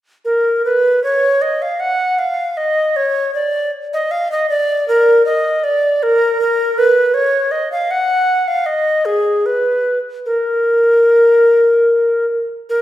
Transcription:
0, 0, Header, 1, 2, 480
1, 0, Start_track
1, 0, Tempo, 777202
1, 159, Time_signature, 4, 2, 24, 8
1, 2074, Tempo, 759494
1, 5434, Tempo, 806452
1, 7900, End_track
2, 0, Start_track
2, 0, Title_t, "Recorder"
2, 0, Program_c, 0, 74
2, 154, Note_on_c, 0, 70, 64
2, 385, Note_off_c, 0, 70, 0
2, 402, Note_on_c, 0, 71, 70
2, 637, Note_off_c, 0, 71, 0
2, 641, Note_on_c, 0, 73, 71
2, 875, Note_on_c, 0, 75, 73
2, 884, Note_off_c, 0, 73, 0
2, 1000, Note_on_c, 0, 77, 68
2, 1010, Note_off_c, 0, 75, 0
2, 1112, Note_on_c, 0, 78, 83
2, 1121, Note_off_c, 0, 77, 0
2, 1350, Note_on_c, 0, 77, 71
2, 1359, Note_off_c, 0, 78, 0
2, 1589, Note_on_c, 0, 75, 82
2, 1598, Note_off_c, 0, 77, 0
2, 1830, Note_on_c, 0, 73, 80
2, 1839, Note_off_c, 0, 75, 0
2, 2062, Note_off_c, 0, 73, 0
2, 2066, Note_on_c, 0, 74, 82
2, 2295, Note_off_c, 0, 74, 0
2, 2438, Note_on_c, 0, 75, 82
2, 2551, Note_on_c, 0, 77, 98
2, 2560, Note_off_c, 0, 75, 0
2, 2674, Note_off_c, 0, 77, 0
2, 2681, Note_on_c, 0, 75, 87
2, 2788, Note_off_c, 0, 75, 0
2, 2792, Note_on_c, 0, 74, 97
2, 3030, Note_off_c, 0, 74, 0
2, 3037, Note_on_c, 0, 70, 87
2, 3270, Note_off_c, 0, 70, 0
2, 3274, Note_on_c, 0, 75, 84
2, 3514, Note_on_c, 0, 74, 77
2, 3523, Note_off_c, 0, 75, 0
2, 3762, Note_on_c, 0, 70, 90
2, 3771, Note_off_c, 0, 74, 0
2, 3999, Note_off_c, 0, 70, 0
2, 4003, Note_on_c, 0, 70, 101
2, 4236, Note_on_c, 0, 71, 93
2, 4246, Note_off_c, 0, 70, 0
2, 4465, Note_on_c, 0, 73, 91
2, 4474, Note_off_c, 0, 71, 0
2, 4700, Note_on_c, 0, 75, 82
2, 4710, Note_off_c, 0, 73, 0
2, 4825, Note_off_c, 0, 75, 0
2, 4830, Note_on_c, 0, 77, 77
2, 4949, Note_on_c, 0, 78, 91
2, 4959, Note_off_c, 0, 77, 0
2, 5309, Note_on_c, 0, 77, 75
2, 5318, Note_off_c, 0, 78, 0
2, 5425, Note_on_c, 0, 75, 75
2, 5435, Note_off_c, 0, 77, 0
2, 5659, Note_on_c, 0, 68, 61
2, 5668, Note_off_c, 0, 75, 0
2, 5901, Note_on_c, 0, 71, 55
2, 5909, Note_off_c, 0, 68, 0
2, 6215, Note_off_c, 0, 71, 0
2, 6377, Note_on_c, 0, 70, 53
2, 7566, Note_off_c, 0, 70, 0
2, 7827, Note_on_c, 0, 70, 73
2, 7900, Note_off_c, 0, 70, 0
2, 7900, End_track
0, 0, End_of_file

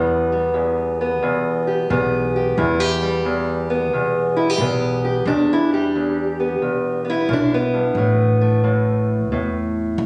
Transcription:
0, 0, Header, 1, 3, 480
1, 0, Start_track
1, 0, Key_signature, 1, "minor"
1, 0, Tempo, 674157
1, 1833, Time_signature, 4, 2, 24, 8
1, 7162, End_track
2, 0, Start_track
2, 0, Title_t, "Steel-string acoustic guitar"
2, 0, Program_c, 0, 25
2, 0, Note_on_c, 0, 40, 66
2, 0, Note_on_c, 0, 52, 46
2, 0, Note_on_c, 0, 55, 48
2, 0, Note_on_c, 0, 59, 90
2, 227, Note_off_c, 0, 55, 0
2, 230, Note_on_c, 0, 55, 46
2, 381, Note_off_c, 0, 40, 0
2, 384, Note_on_c, 0, 40, 64
2, 506, Note_off_c, 0, 52, 0
2, 710, Note_off_c, 0, 59, 0
2, 718, Note_on_c, 0, 59, 42
2, 870, Note_off_c, 0, 40, 0
2, 873, Note_on_c, 0, 40, 64
2, 1191, Note_on_c, 0, 67, 44
2, 1350, Note_off_c, 0, 40, 0
2, 1353, Note_on_c, 0, 40, 73
2, 1359, Note_off_c, 0, 59, 0
2, 1362, Note_on_c, 0, 59, 51
2, 1677, Note_off_c, 0, 67, 0
2, 1679, Note_on_c, 0, 67, 47
2, 1831, Note_off_c, 0, 40, 0
2, 1834, Note_on_c, 0, 40, 72
2, 1836, Note_off_c, 0, 67, 0
2, 1838, Note_on_c, 0, 64, 60
2, 1994, Note_off_c, 0, 64, 0
2, 1994, Note_on_c, 0, 67, 49
2, 2148, Note_off_c, 0, 55, 0
2, 2150, Note_on_c, 0, 55, 56
2, 2313, Note_off_c, 0, 40, 0
2, 2316, Note_on_c, 0, 40, 66
2, 2632, Note_off_c, 0, 59, 0
2, 2634, Note_on_c, 0, 59, 56
2, 2797, Note_off_c, 0, 40, 0
2, 2800, Note_on_c, 0, 40, 59
2, 3105, Note_off_c, 0, 67, 0
2, 3108, Note_on_c, 0, 64, 56
2, 3201, Note_off_c, 0, 64, 0
2, 3201, Note_on_c, 0, 67, 52
2, 3271, Note_off_c, 0, 40, 0
2, 3274, Note_off_c, 0, 59, 0
2, 3279, Note_on_c, 0, 40, 69
2, 3283, Note_on_c, 0, 59, 58
2, 3585, Note_off_c, 0, 67, 0
2, 3593, Note_on_c, 0, 67, 57
2, 3738, Note_off_c, 0, 67, 0
2, 3744, Note_off_c, 0, 40, 0
2, 3752, Note_on_c, 0, 40, 71
2, 3753, Note_off_c, 0, 59, 0
2, 3756, Note_on_c, 0, 62, 89
2, 3936, Note_on_c, 0, 64, 79
2, 4067, Note_off_c, 0, 55, 0
2, 4074, Note_on_c, 0, 55, 43
2, 4082, Note_off_c, 0, 64, 0
2, 4085, Note_on_c, 0, 67, 82
2, 4231, Note_off_c, 0, 40, 0
2, 4239, Note_on_c, 0, 40, 62
2, 4394, Note_off_c, 0, 62, 0
2, 4555, Note_on_c, 0, 59, 43
2, 4705, Note_off_c, 0, 40, 0
2, 4714, Note_on_c, 0, 40, 55
2, 5009, Note_off_c, 0, 59, 0
2, 5018, Note_on_c, 0, 59, 42
2, 5041, Note_off_c, 0, 67, 0
2, 5053, Note_on_c, 0, 64, 87
2, 5186, Note_off_c, 0, 40, 0
2, 5189, Note_on_c, 0, 42, 60
2, 5191, Note_off_c, 0, 59, 0
2, 5221, Note_on_c, 0, 62, 85
2, 5368, Note_off_c, 0, 62, 0
2, 5370, Note_on_c, 0, 59, 84
2, 5503, Note_off_c, 0, 42, 0
2, 5509, Note_on_c, 0, 43, 59
2, 5676, Note_on_c, 0, 45, 65
2, 5678, Note_off_c, 0, 43, 0
2, 5681, Note_off_c, 0, 55, 0
2, 5684, Note_on_c, 0, 57, 43
2, 5685, Note_off_c, 0, 64, 0
2, 5982, Note_off_c, 0, 57, 0
2, 5991, Note_on_c, 0, 57, 43
2, 6141, Note_off_c, 0, 45, 0
2, 6150, Note_on_c, 0, 45, 67
2, 6627, Note_off_c, 0, 45, 0
2, 6635, Note_on_c, 0, 45, 68
2, 6806, Note_off_c, 0, 59, 0
2, 7162, Note_off_c, 0, 45, 0
2, 7162, Note_off_c, 0, 57, 0
2, 7162, End_track
3, 0, Start_track
3, 0, Title_t, "Upright bass"
3, 0, Program_c, 1, 32
3, 0, Note_on_c, 1, 40, 89
3, 877, Note_off_c, 1, 40, 0
3, 877, Note_on_c, 1, 35, 85
3, 1327, Note_off_c, 1, 35, 0
3, 1356, Note_on_c, 1, 35, 91
3, 1806, Note_off_c, 1, 35, 0
3, 1833, Note_on_c, 1, 40, 91
3, 2793, Note_off_c, 1, 40, 0
3, 2793, Note_on_c, 1, 35, 89
3, 3244, Note_off_c, 1, 35, 0
3, 3262, Note_on_c, 1, 35, 82
3, 3719, Note_off_c, 1, 35, 0
3, 3741, Note_on_c, 1, 40, 83
3, 4703, Note_off_c, 1, 40, 0
3, 4703, Note_on_c, 1, 35, 76
3, 5161, Note_off_c, 1, 35, 0
3, 5187, Note_on_c, 1, 35, 84
3, 5644, Note_off_c, 1, 35, 0
3, 5658, Note_on_c, 1, 33, 80
3, 6626, Note_off_c, 1, 33, 0
3, 6626, Note_on_c, 1, 40, 80
3, 7085, Note_off_c, 1, 40, 0
3, 7106, Note_on_c, 1, 30, 94
3, 7162, Note_off_c, 1, 30, 0
3, 7162, End_track
0, 0, End_of_file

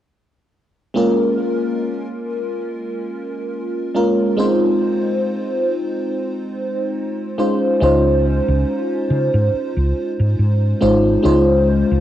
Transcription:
0, 0, Header, 1, 4, 480
1, 0, Start_track
1, 0, Tempo, 857143
1, 538, Time_signature, 4, 2, 24, 8
1, 6722, End_track
2, 0, Start_track
2, 0, Title_t, "FM electric piano"
2, 0, Program_c, 0, 5
2, 527, Note_on_c, 0, 56, 73
2, 530, Note_on_c, 0, 58, 68
2, 536, Note_on_c, 0, 61, 67
2, 539, Note_on_c, 0, 65, 70
2, 544, Note_on_c, 0, 70, 81
2, 643, Control_c, 0, 64, 127
2, 2187, Note_off_c, 0, 56, 0
2, 2188, Note_off_c, 0, 58, 0
2, 2191, Note_off_c, 0, 61, 0
2, 2192, Note_off_c, 0, 65, 0
2, 2195, Note_off_c, 0, 70, 0
2, 2209, Note_on_c, 0, 56, 68
2, 2212, Note_on_c, 0, 58, 61
2, 2214, Note_on_c, 0, 61, 62
2, 2217, Note_on_c, 0, 65, 64
2, 2219, Note_on_c, 0, 70, 74
2, 2428, Note_off_c, 0, 56, 0
2, 2429, Note_off_c, 0, 58, 0
2, 2430, Note_off_c, 0, 61, 0
2, 2431, Note_off_c, 0, 65, 0
2, 2432, Note_off_c, 0, 70, 0
2, 2446, Note_on_c, 0, 56, 76
2, 2450, Note_on_c, 0, 60, 70
2, 2453, Note_on_c, 0, 63, 69
2, 2457, Note_on_c, 0, 65, 68
2, 2462, Note_on_c, 0, 72, 82
2, 2466, Control_c, 0, 64, 0
2, 2568, Control_c, 0, 64, 127
2, 4106, Note_off_c, 0, 56, 0
2, 4108, Note_off_c, 0, 60, 0
2, 4109, Note_off_c, 0, 63, 0
2, 4111, Note_off_c, 0, 65, 0
2, 4114, Note_off_c, 0, 72, 0
2, 4133, Note_on_c, 0, 56, 71
2, 4134, Note_on_c, 0, 61, 61
2, 4138, Note_on_c, 0, 63, 63
2, 4140, Note_on_c, 0, 65, 64
2, 4142, Note_on_c, 0, 72, 77
2, 4146, Control_c, 0, 64, 0
2, 4249, Control_c, 0, 64, 127
2, 4349, Note_off_c, 0, 56, 0
2, 4350, Note_off_c, 0, 61, 0
2, 4352, Note_off_c, 0, 63, 0
2, 4353, Note_off_c, 0, 65, 0
2, 4354, Note_off_c, 0, 72, 0
2, 4370, Note_on_c, 0, 56, 78
2, 4373, Note_on_c, 0, 61, 71
2, 4378, Note_on_c, 0, 63, 72
2, 4381, Note_on_c, 0, 65, 72
2, 4385, Note_on_c, 0, 72, 85
2, 6028, Note_off_c, 0, 56, 0
2, 6030, Note_off_c, 0, 61, 0
2, 6032, Note_off_c, 0, 63, 0
2, 6033, Note_off_c, 0, 65, 0
2, 6036, Note_off_c, 0, 72, 0
2, 6052, Note_on_c, 0, 56, 70
2, 6053, Note_on_c, 0, 61, 62
2, 6055, Note_on_c, 0, 63, 65
2, 6058, Note_on_c, 0, 65, 65
2, 6060, Note_on_c, 0, 72, 76
2, 6269, Note_off_c, 0, 56, 0
2, 6270, Note_off_c, 0, 61, 0
2, 6270, Note_off_c, 0, 63, 0
2, 6272, Note_off_c, 0, 65, 0
2, 6273, Note_off_c, 0, 72, 0
2, 6286, Note_on_c, 0, 56, 80
2, 6290, Note_on_c, 0, 61, 71
2, 6294, Note_on_c, 0, 63, 73
2, 6300, Note_on_c, 0, 65, 71
2, 6303, Note_on_c, 0, 72, 86
2, 6722, Note_off_c, 0, 56, 0
2, 6722, Note_off_c, 0, 61, 0
2, 6722, Note_off_c, 0, 63, 0
2, 6722, Note_off_c, 0, 65, 0
2, 6722, Note_off_c, 0, 72, 0
2, 6722, End_track
3, 0, Start_track
3, 0, Title_t, "Fretless electric bass"
3, 0, Program_c, 1, 35
3, 4378, Note_on_c, 1, 37, 90
3, 4699, Note_off_c, 1, 37, 0
3, 4750, Note_on_c, 1, 37, 85
3, 4832, Note_off_c, 1, 37, 0
3, 5098, Note_on_c, 1, 49, 86
3, 5198, Note_off_c, 1, 49, 0
3, 5230, Note_on_c, 1, 44, 95
3, 5312, Note_off_c, 1, 44, 0
3, 5469, Note_on_c, 1, 37, 83
3, 5551, Note_off_c, 1, 37, 0
3, 5709, Note_on_c, 1, 44, 86
3, 5791, Note_off_c, 1, 44, 0
3, 5817, Note_on_c, 1, 44, 92
3, 6005, Note_off_c, 1, 44, 0
3, 6059, Note_on_c, 1, 32, 90
3, 6246, Note_off_c, 1, 32, 0
3, 6298, Note_on_c, 1, 37, 93
3, 6619, Note_off_c, 1, 37, 0
3, 6671, Note_on_c, 1, 37, 84
3, 6722, Note_off_c, 1, 37, 0
3, 6722, End_track
4, 0, Start_track
4, 0, Title_t, "Muted fretless electric bass strokes"
4, 5338, Note_on_c, 9, 29, 42
4, 5394, Note_off_c, 9, 29, 0
4, 6722, End_track
0, 0, End_of_file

